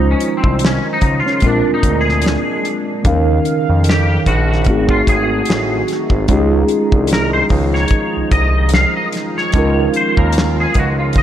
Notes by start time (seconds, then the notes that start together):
Already playing: C#2 D#3 F3 G#3 C#4 D#4 F4 C5
0.11 C#4
0.20 closed hi-hat
0.37 C4
0.44 C2, kick
0.59 closed hi-hat
0.65 C#4, snare
0.93 D#4
1.01 C#2, kick, closed hi-hat
1.20 F4
1.26 C#3, snare
1.40 A#1 A#2 G#3 C4 D4, kick, closed hi-hat
1.45 D4 F4 A#4
1.67 D2
1.74 D#4
1.83 D2, kick, closed hi-hat
2.01 G#4
2.09 snare
2.22 closed hi-hat
2.26 snare
2.65 closed hi-hat
3.03 D#2 C#3 D#3 F3 C#4 D#4 F5, kick, closed hi-hat
3.09 D#3 A#4
3.45 closed hi-hat
3.69 F2
3.84 closed hi-hat
3.89 G4, snare
4.26 A#1 F#4, kick, closed hi-hat
4.53 snare
4.64 G#1 D#3 A3 C4 D#4 F#4, kick, closed hi-hat
4.70 F#4 G#4
4.89 F4, kick
5.07 G#1 G#4, kick, closed hi-hat
5.45 A1, closed hi-hat
5.50 snare
5.88 snare, closed hi-hat
6.10 G#1, kick
6.28 C#2 F3 G#3 C#4 D#4 F4, kick, closed hi-hat
6.33 G4
6.39 G#4
6.68 closed hi-hat
6.92 C2, kick
7.07 closed hi-hat
7.13 A#4, snare
7.33 C5
7.49 C#2, kick, open hi-hat
7.74 C#5, snare
7.88 kick, closed hi-hat
8.17 C2
8.31 C2 D#5, kick, closed hi-hat
8.69 closed hi-hat
8.74 F5, snare
8.96 D#5
9.12 snare, closed hi-hat
9.38 C#5, snare
9.52 C#2 G#3 C#4 D#4 F4, kick, closed hi-hat
9.57 F4 A#4
9.94 C5, closed hi-hat
10.17 D#2 A#4, kick
10.33 closed hi-hat
10.38 snare
10.60 G#4
10.74 C#2, kick, closed hi-hat
10.79 F#4
10.99 F4
11.13 kick, closed hi-hat
11.18 D#5